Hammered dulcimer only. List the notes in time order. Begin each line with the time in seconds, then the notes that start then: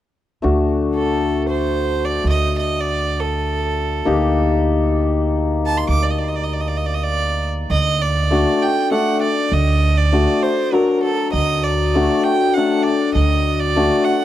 0.42 A3 D4 F#4
4.05 A#3 D#4 G4
8.31 A3 D4 F#4
8.91 A3 D4 A4
10.12 A3 D4 F#4
10.72 F#3 D4 F#4
11.95 A3 D4 F#4
12.57 A3 D4 A4
13.76 A3 D4 F#4